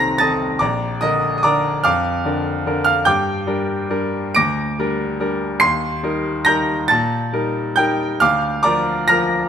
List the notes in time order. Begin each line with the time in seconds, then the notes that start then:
Already playing: C2 D#3 C4 A4 A#5 C6 A6 A#6 C7
0.18 D#3 C4 A4 A5 D#6 A6
0.59 A#1 D5 A#5 D6
1.01 D3 D4 A#4 D#5 D#6
1.38 D#6
1.43 D3 D4 A#4 D5 A#5 D6
1.84 F2 F5 D6 F6
2.25 D3 D4 A#4
2.66 D3 D4 A#4
2.85 F5 F6
3.05 G2 G5 D6 G6
3.47 G3 D4 A#4
3.90 G3 D4 A#4
4.35 D2 D6 A#6 D7
4.79 G3 D4 A#4
5.20 G3 D4 A#4
5.60 D#2 C6 C7
6.03 G3 D#4 A#4
6.45 G3 D#4 A#4 A#5 G6 A#6
6.88 A#2 A5 A6
7.33 G3 D#4 A#4
7.76 G3 D#4 A#4 G5 G6
8.20 D2 F5 D6 F6
8.63 F3 F4 A#4 D5 A#5 D6
9.08 F3 F4 A#4 A#5 F6 A#6